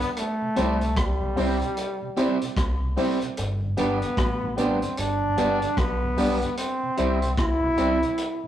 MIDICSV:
0, 0, Header, 1, 7, 480
1, 0, Start_track
1, 0, Key_signature, 0, "major"
1, 0, Tempo, 801068
1, 99, Time_signature, 4, 2, 24, 8
1, 5078, End_track
2, 0, Start_track
2, 0, Title_t, "Upright piano"
2, 0, Program_c, 0, 0
2, 335, Note_on_c, 0, 60, 95
2, 337, Note_on_c, 0, 64, 79
2, 340, Note_on_c, 0, 67, 73
2, 342, Note_on_c, 0, 72, 88
2, 469, Note_off_c, 0, 60, 0
2, 470, Note_off_c, 0, 64, 0
2, 471, Note_off_c, 0, 67, 0
2, 472, Note_off_c, 0, 72, 0
2, 815, Note_on_c, 0, 60, 96
2, 817, Note_on_c, 0, 64, 82
2, 819, Note_on_c, 0, 67, 90
2, 823, Note_on_c, 0, 72, 96
2, 949, Note_off_c, 0, 60, 0
2, 950, Note_off_c, 0, 64, 0
2, 951, Note_off_c, 0, 67, 0
2, 953, Note_off_c, 0, 72, 0
2, 1297, Note_on_c, 0, 60, 94
2, 1298, Note_on_c, 0, 64, 79
2, 1301, Note_on_c, 0, 67, 81
2, 1304, Note_on_c, 0, 72, 97
2, 1430, Note_off_c, 0, 60, 0
2, 1431, Note_off_c, 0, 64, 0
2, 1432, Note_off_c, 0, 67, 0
2, 1433, Note_off_c, 0, 72, 0
2, 1777, Note_on_c, 0, 60, 89
2, 1780, Note_on_c, 0, 64, 83
2, 1782, Note_on_c, 0, 67, 76
2, 1784, Note_on_c, 0, 72, 92
2, 1910, Note_off_c, 0, 60, 0
2, 1912, Note_off_c, 0, 64, 0
2, 1913, Note_off_c, 0, 67, 0
2, 1914, Note_off_c, 0, 72, 0
2, 2258, Note_on_c, 0, 62, 86
2, 2260, Note_on_c, 0, 67, 80
2, 2262, Note_on_c, 0, 71, 82
2, 2265, Note_on_c, 0, 74, 92
2, 2391, Note_off_c, 0, 62, 0
2, 2392, Note_off_c, 0, 67, 0
2, 2393, Note_off_c, 0, 71, 0
2, 2394, Note_off_c, 0, 74, 0
2, 2736, Note_on_c, 0, 62, 98
2, 2739, Note_on_c, 0, 67, 88
2, 2741, Note_on_c, 0, 71, 88
2, 2744, Note_on_c, 0, 74, 101
2, 2870, Note_off_c, 0, 62, 0
2, 2871, Note_off_c, 0, 67, 0
2, 2872, Note_off_c, 0, 71, 0
2, 2874, Note_off_c, 0, 74, 0
2, 3217, Note_on_c, 0, 62, 91
2, 3220, Note_on_c, 0, 67, 80
2, 3223, Note_on_c, 0, 71, 83
2, 3225, Note_on_c, 0, 74, 92
2, 3350, Note_off_c, 0, 62, 0
2, 3352, Note_off_c, 0, 67, 0
2, 3353, Note_off_c, 0, 71, 0
2, 3355, Note_off_c, 0, 74, 0
2, 3696, Note_on_c, 0, 62, 86
2, 3699, Note_on_c, 0, 67, 84
2, 3701, Note_on_c, 0, 71, 75
2, 3704, Note_on_c, 0, 74, 88
2, 3830, Note_off_c, 0, 62, 0
2, 3831, Note_off_c, 0, 67, 0
2, 3833, Note_off_c, 0, 71, 0
2, 3834, Note_off_c, 0, 74, 0
2, 4177, Note_on_c, 0, 64, 82
2, 4179, Note_on_c, 0, 67, 85
2, 4181, Note_on_c, 0, 72, 79
2, 4184, Note_on_c, 0, 76, 101
2, 4310, Note_off_c, 0, 64, 0
2, 4311, Note_off_c, 0, 67, 0
2, 4313, Note_off_c, 0, 72, 0
2, 4314, Note_off_c, 0, 76, 0
2, 4656, Note_on_c, 0, 64, 94
2, 4659, Note_on_c, 0, 67, 85
2, 4660, Note_on_c, 0, 72, 82
2, 4663, Note_on_c, 0, 76, 94
2, 4790, Note_off_c, 0, 64, 0
2, 4791, Note_off_c, 0, 67, 0
2, 4792, Note_off_c, 0, 72, 0
2, 4793, Note_off_c, 0, 76, 0
2, 5078, End_track
3, 0, Start_track
3, 0, Title_t, "Clean electric guitar"
3, 0, Program_c, 1, 27
3, 337, Note_on_c, 1, 55, 85
3, 341, Note_on_c, 1, 60, 96
3, 346, Note_on_c, 1, 64, 105
3, 348, Note_on_c, 1, 67, 85
3, 456, Note_off_c, 1, 55, 0
3, 458, Note_off_c, 1, 60, 0
3, 460, Note_off_c, 1, 64, 0
3, 461, Note_off_c, 1, 67, 0
3, 821, Note_on_c, 1, 55, 80
3, 826, Note_on_c, 1, 60, 96
3, 828, Note_on_c, 1, 64, 86
3, 832, Note_on_c, 1, 67, 91
3, 938, Note_off_c, 1, 55, 0
3, 940, Note_off_c, 1, 60, 0
3, 941, Note_off_c, 1, 64, 0
3, 943, Note_off_c, 1, 67, 0
3, 1298, Note_on_c, 1, 55, 99
3, 1303, Note_on_c, 1, 60, 92
3, 1306, Note_on_c, 1, 64, 102
3, 1309, Note_on_c, 1, 67, 101
3, 1416, Note_off_c, 1, 55, 0
3, 1419, Note_off_c, 1, 60, 0
3, 1420, Note_off_c, 1, 64, 0
3, 1422, Note_off_c, 1, 67, 0
3, 1779, Note_on_c, 1, 55, 80
3, 1783, Note_on_c, 1, 60, 92
3, 1788, Note_on_c, 1, 64, 91
3, 1791, Note_on_c, 1, 67, 104
3, 1897, Note_off_c, 1, 55, 0
3, 1899, Note_off_c, 1, 60, 0
3, 1901, Note_off_c, 1, 64, 0
3, 1903, Note_off_c, 1, 67, 0
3, 2260, Note_on_c, 1, 55, 69
3, 2265, Note_on_c, 1, 59, 82
3, 2269, Note_on_c, 1, 62, 88
3, 2271, Note_on_c, 1, 67, 91
3, 2378, Note_off_c, 1, 55, 0
3, 2380, Note_off_c, 1, 59, 0
3, 2382, Note_off_c, 1, 62, 0
3, 2383, Note_off_c, 1, 67, 0
3, 2742, Note_on_c, 1, 55, 81
3, 2747, Note_on_c, 1, 59, 92
3, 2750, Note_on_c, 1, 62, 95
3, 2754, Note_on_c, 1, 67, 94
3, 2858, Note_off_c, 1, 55, 0
3, 2861, Note_off_c, 1, 59, 0
3, 2862, Note_off_c, 1, 62, 0
3, 2864, Note_off_c, 1, 67, 0
3, 3220, Note_on_c, 1, 55, 87
3, 3226, Note_on_c, 1, 59, 98
3, 3228, Note_on_c, 1, 62, 91
3, 3231, Note_on_c, 1, 67, 104
3, 3338, Note_off_c, 1, 55, 0
3, 3341, Note_off_c, 1, 59, 0
3, 3342, Note_off_c, 1, 62, 0
3, 3343, Note_off_c, 1, 67, 0
3, 3699, Note_on_c, 1, 55, 90
3, 3704, Note_on_c, 1, 59, 96
3, 3708, Note_on_c, 1, 62, 86
3, 3710, Note_on_c, 1, 67, 90
3, 3817, Note_off_c, 1, 55, 0
3, 3819, Note_off_c, 1, 59, 0
3, 3822, Note_off_c, 1, 62, 0
3, 3822, Note_off_c, 1, 67, 0
3, 4180, Note_on_c, 1, 55, 85
3, 4185, Note_on_c, 1, 60, 73
3, 4189, Note_on_c, 1, 64, 83
3, 4191, Note_on_c, 1, 67, 80
3, 4298, Note_off_c, 1, 55, 0
3, 4300, Note_off_c, 1, 60, 0
3, 4302, Note_off_c, 1, 64, 0
3, 4303, Note_off_c, 1, 67, 0
3, 4658, Note_on_c, 1, 55, 84
3, 4663, Note_on_c, 1, 60, 87
3, 4666, Note_on_c, 1, 64, 88
3, 4669, Note_on_c, 1, 67, 94
3, 4777, Note_off_c, 1, 55, 0
3, 4779, Note_off_c, 1, 60, 0
3, 4781, Note_off_c, 1, 64, 0
3, 4782, Note_off_c, 1, 67, 0
3, 5078, End_track
4, 0, Start_track
4, 0, Title_t, "Trombone"
4, 0, Program_c, 2, 57
4, 0, Note_on_c, 2, 59, 127
4, 72, Note_off_c, 2, 59, 0
4, 72, Note_on_c, 2, 59, 66
4, 108, Note_on_c, 2, 57, 105
4, 117, Note_off_c, 2, 59, 0
4, 583, Note_off_c, 2, 57, 0
4, 588, Note_on_c, 2, 55, 90
4, 1520, Note_off_c, 2, 55, 0
4, 2268, Note_on_c, 2, 59, 100
4, 2746, Note_on_c, 2, 60, 82
4, 2755, Note_off_c, 2, 59, 0
4, 2987, Note_on_c, 2, 62, 104
4, 2996, Note_off_c, 2, 60, 0
4, 3466, Note_on_c, 2, 59, 95
4, 3475, Note_off_c, 2, 62, 0
4, 3938, Note_off_c, 2, 59, 0
4, 3942, Note_on_c, 2, 60, 93
4, 4397, Note_off_c, 2, 60, 0
4, 4426, Note_on_c, 2, 64, 109
4, 5078, Note_off_c, 2, 64, 0
4, 5078, End_track
5, 0, Start_track
5, 0, Title_t, "Tonewheel organ"
5, 0, Program_c, 3, 16
5, 10, Note_on_c, 3, 50, 60
5, 11, Note_on_c, 3, 43, 57
5, 49, Note_off_c, 3, 43, 0
5, 49, Note_off_c, 3, 50, 0
5, 250, Note_on_c, 3, 48, 65
5, 289, Note_off_c, 3, 48, 0
5, 338, Note_on_c, 3, 55, 76
5, 340, Note_on_c, 3, 60, 63
5, 342, Note_on_c, 3, 64, 83
5, 404, Note_off_c, 3, 55, 0
5, 405, Note_off_c, 3, 60, 0
5, 406, Note_off_c, 3, 64, 0
5, 492, Note_on_c, 3, 48, 56
5, 530, Note_off_c, 3, 48, 0
5, 729, Note_on_c, 3, 48, 55
5, 769, Note_off_c, 3, 48, 0
5, 815, Note_on_c, 3, 55, 86
5, 818, Note_on_c, 3, 60, 72
5, 819, Note_on_c, 3, 64, 90
5, 882, Note_off_c, 3, 55, 0
5, 884, Note_off_c, 3, 60, 0
5, 884, Note_off_c, 3, 64, 0
5, 970, Note_on_c, 3, 48, 61
5, 1009, Note_off_c, 3, 48, 0
5, 1209, Note_on_c, 3, 48, 62
5, 1249, Note_off_c, 3, 48, 0
5, 1300, Note_on_c, 3, 55, 81
5, 1300, Note_on_c, 3, 60, 82
5, 1302, Note_on_c, 3, 64, 98
5, 1365, Note_off_c, 3, 55, 0
5, 1365, Note_off_c, 3, 60, 0
5, 1366, Note_off_c, 3, 64, 0
5, 1452, Note_on_c, 3, 48, 58
5, 1490, Note_off_c, 3, 48, 0
5, 1691, Note_on_c, 3, 48, 58
5, 1730, Note_off_c, 3, 48, 0
5, 1784, Note_on_c, 3, 55, 74
5, 1784, Note_on_c, 3, 60, 71
5, 1787, Note_on_c, 3, 64, 88
5, 1847, Note_off_c, 3, 55, 0
5, 1847, Note_off_c, 3, 60, 0
5, 1849, Note_off_c, 3, 64, 0
5, 1932, Note_on_c, 3, 48, 58
5, 1970, Note_off_c, 3, 48, 0
5, 2170, Note_on_c, 3, 43, 53
5, 2170, Note_on_c, 3, 50, 56
5, 2209, Note_off_c, 3, 43, 0
5, 2209, Note_off_c, 3, 50, 0
5, 2260, Note_on_c, 3, 59, 75
5, 2261, Note_on_c, 3, 55, 79
5, 2263, Note_on_c, 3, 62, 79
5, 2325, Note_off_c, 3, 55, 0
5, 2325, Note_off_c, 3, 59, 0
5, 2327, Note_off_c, 3, 62, 0
5, 2408, Note_on_c, 3, 43, 62
5, 2410, Note_on_c, 3, 50, 56
5, 2449, Note_off_c, 3, 43, 0
5, 2449, Note_off_c, 3, 50, 0
5, 2649, Note_on_c, 3, 43, 55
5, 2650, Note_on_c, 3, 50, 63
5, 2689, Note_off_c, 3, 43, 0
5, 2689, Note_off_c, 3, 50, 0
5, 2738, Note_on_c, 3, 55, 83
5, 2739, Note_on_c, 3, 59, 78
5, 2741, Note_on_c, 3, 62, 89
5, 2804, Note_off_c, 3, 55, 0
5, 2804, Note_off_c, 3, 59, 0
5, 2806, Note_off_c, 3, 62, 0
5, 2890, Note_on_c, 3, 43, 62
5, 2890, Note_on_c, 3, 50, 62
5, 2929, Note_off_c, 3, 43, 0
5, 2930, Note_off_c, 3, 50, 0
5, 3130, Note_on_c, 3, 43, 57
5, 3130, Note_on_c, 3, 50, 58
5, 3169, Note_off_c, 3, 43, 0
5, 3170, Note_off_c, 3, 50, 0
5, 3220, Note_on_c, 3, 55, 90
5, 3222, Note_on_c, 3, 59, 74
5, 3223, Note_on_c, 3, 62, 101
5, 3285, Note_off_c, 3, 55, 0
5, 3286, Note_off_c, 3, 59, 0
5, 3287, Note_off_c, 3, 62, 0
5, 3370, Note_on_c, 3, 43, 58
5, 3370, Note_on_c, 3, 50, 58
5, 3409, Note_off_c, 3, 50, 0
5, 3410, Note_off_c, 3, 43, 0
5, 3610, Note_on_c, 3, 50, 61
5, 3611, Note_on_c, 3, 43, 60
5, 3650, Note_off_c, 3, 43, 0
5, 3650, Note_off_c, 3, 50, 0
5, 3701, Note_on_c, 3, 55, 71
5, 3705, Note_on_c, 3, 59, 67
5, 3705, Note_on_c, 3, 62, 79
5, 3766, Note_off_c, 3, 55, 0
5, 3768, Note_off_c, 3, 59, 0
5, 3768, Note_off_c, 3, 62, 0
5, 3853, Note_on_c, 3, 50, 67
5, 3854, Note_on_c, 3, 43, 56
5, 3891, Note_off_c, 3, 50, 0
5, 3892, Note_off_c, 3, 43, 0
5, 4093, Note_on_c, 3, 48, 61
5, 4131, Note_off_c, 3, 48, 0
5, 4184, Note_on_c, 3, 55, 74
5, 4184, Note_on_c, 3, 60, 66
5, 4187, Note_on_c, 3, 64, 73
5, 4247, Note_off_c, 3, 55, 0
5, 4247, Note_off_c, 3, 60, 0
5, 4249, Note_off_c, 3, 64, 0
5, 4333, Note_on_c, 3, 48, 63
5, 4371, Note_off_c, 3, 48, 0
5, 4573, Note_on_c, 3, 48, 56
5, 4611, Note_off_c, 3, 48, 0
5, 4661, Note_on_c, 3, 55, 81
5, 4663, Note_on_c, 3, 60, 72
5, 4666, Note_on_c, 3, 64, 91
5, 4726, Note_off_c, 3, 55, 0
5, 4727, Note_off_c, 3, 60, 0
5, 4728, Note_off_c, 3, 64, 0
5, 4815, Note_on_c, 3, 48, 63
5, 4852, Note_off_c, 3, 48, 0
5, 5053, Note_on_c, 3, 48, 61
5, 5078, Note_off_c, 3, 48, 0
5, 5078, End_track
6, 0, Start_track
6, 0, Title_t, "Fingered electric bass"
6, 0, Program_c, 4, 33
6, 348, Note_on_c, 4, 36, 101
6, 566, Note_off_c, 4, 36, 0
6, 581, Note_on_c, 4, 36, 92
6, 718, Note_off_c, 4, 36, 0
6, 738, Note_on_c, 4, 35, 87
6, 818, Note_off_c, 4, 35, 0
6, 828, Note_on_c, 4, 36, 87
6, 962, Note_off_c, 4, 36, 0
6, 1541, Note_on_c, 4, 36, 92
6, 1763, Note_off_c, 4, 36, 0
6, 2030, Note_on_c, 4, 31, 111
6, 2248, Note_off_c, 4, 31, 0
6, 2269, Note_on_c, 4, 31, 98
6, 2402, Note_off_c, 4, 31, 0
6, 2504, Note_on_c, 4, 33, 108
6, 2866, Note_off_c, 4, 33, 0
6, 2987, Note_on_c, 4, 31, 87
6, 3207, Note_off_c, 4, 31, 0
6, 3229, Note_on_c, 4, 31, 86
6, 3363, Note_off_c, 4, 31, 0
6, 3460, Note_on_c, 4, 35, 106
6, 3683, Note_off_c, 4, 35, 0
6, 3707, Note_on_c, 4, 35, 85
6, 3842, Note_off_c, 4, 35, 0
6, 4188, Note_on_c, 4, 36, 82
6, 4407, Note_off_c, 4, 36, 0
6, 4422, Note_on_c, 4, 36, 106
6, 4559, Note_off_c, 4, 36, 0
6, 4576, Note_on_c, 4, 35, 90
6, 4658, Note_off_c, 4, 35, 0
6, 4667, Note_on_c, 4, 36, 102
6, 4801, Note_off_c, 4, 36, 0
6, 5078, End_track
7, 0, Start_track
7, 0, Title_t, "Drums"
7, 8, Note_on_c, 9, 42, 54
7, 68, Note_off_c, 9, 42, 0
7, 99, Note_on_c, 9, 42, 99
7, 159, Note_off_c, 9, 42, 0
7, 337, Note_on_c, 9, 42, 76
7, 397, Note_off_c, 9, 42, 0
7, 486, Note_on_c, 9, 42, 52
7, 546, Note_off_c, 9, 42, 0
7, 577, Note_on_c, 9, 42, 89
7, 578, Note_on_c, 9, 36, 112
7, 581, Note_on_c, 9, 37, 103
7, 637, Note_off_c, 9, 42, 0
7, 638, Note_off_c, 9, 36, 0
7, 641, Note_off_c, 9, 37, 0
7, 821, Note_on_c, 9, 46, 53
7, 880, Note_off_c, 9, 46, 0
7, 968, Note_on_c, 9, 42, 49
7, 1028, Note_off_c, 9, 42, 0
7, 1059, Note_on_c, 9, 42, 89
7, 1119, Note_off_c, 9, 42, 0
7, 1300, Note_on_c, 9, 42, 74
7, 1360, Note_off_c, 9, 42, 0
7, 1447, Note_on_c, 9, 42, 59
7, 1507, Note_off_c, 9, 42, 0
7, 1537, Note_on_c, 9, 36, 113
7, 1540, Note_on_c, 9, 37, 99
7, 1541, Note_on_c, 9, 42, 93
7, 1597, Note_off_c, 9, 36, 0
7, 1600, Note_off_c, 9, 37, 0
7, 1601, Note_off_c, 9, 42, 0
7, 1781, Note_on_c, 9, 46, 70
7, 1841, Note_off_c, 9, 46, 0
7, 1927, Note_on_c, 9, 42, 52
7, 1987, Note_off_c, 9, 42, 0
7, 2020, Note_on_c, 9, 42, 112
7, 2080, Note_off_c, 9, 42, 0
7, 2261, Note_on_c, 9, 42, 81
7, 2321, Note_off_c, 9, 42, 0
7, 2408, Note_on_c, 9, 42, 50
7, 2468, Note_off_c, 9, 42, 0
7, 2500, Note_on_c, 9, 36, 118
7, 2501, Note_on_c, 9, 42, 93
7, 2505, Note_on_c, 9, 37, 108
7, 2560, Note_off_c, 9, 36, 0
7, 2561, Note_off_c, 9, 42, 0
7, 2565, Note_off_c, 9, 37, 0
7, 2742, Note_on_c, 9, 42, 67
7, 2802, Note_off_c, 9, 42, 0
7, 2889, Note_on_c, 9, 42, 51
7, 2948, Note_off_c, 9, 42, 0
7, 2979, Note_on_c, 9, 42, 95
7, 3039, Note_off_c, 9, 42, 0
7, 3221, Note_on_c, 9, 42, 84
7, 3281, Note_off_c, 9, 42, 0
7, 3367, Note_on_c, 9, 42, 59
7, 3427, Note_off_c, 9, 42, 0
7, 3458, Note_on_c, 9, 36, 113
7, 3460, Note_on_c, 9, 37, 100
7, 3461, Note_on_c, 9, 42, 82
7, 3518, Note_off_c, 9, 36, 0
7, 3520, Note_off_c, 9, 37, 0
7, 3521, Note_off_c, 9, 42, 0
7, 3700, Note_on_c, 9, 46, 68
7, 3760, Note_off_c, 9, 46, 0
7, 3847, Note_on_c, 9, 42, 57
7, 3907, Note_off_c, 9, 42, 0
7, 3939, Note_on_c, 9, 42, 102
7, 3999, Note_off_c, 9, 42, 0
7, 4178, Note_on_c, 9, 42, 74
7, 4238, Note_off_c, 9, 42, 0
7, 4327, Note_on_c, 9, 42, 57
7, 4386, Note_off_c, 9, 42, 0
7, 4419, Note_on_c, 9, 36, 101
7, 4419, Note_on_c, 9, 42, 89
7, 4423, Note_on_c, 9, 37, 116
7, 4479, Note_off_c, 9, 36, 0
7, 4479, Note_off_c, 9, 42, 0
7, 4483, Note_off_c, 9, 37, 0
7, 4660, Note_on_c, 9, 42, 75
7, 4720, Note_off_c, 9, 42, 0
7, 4808, Note_on_c, 9, 42, 45
7, 4868, Note_off_c, 9, 42, 0
7, 4899, Note_on_c, 9, 42, 88
7, 4959, Note_off_c, 9, 42, 0
7, 5078, End_track
0, 0, End_of_file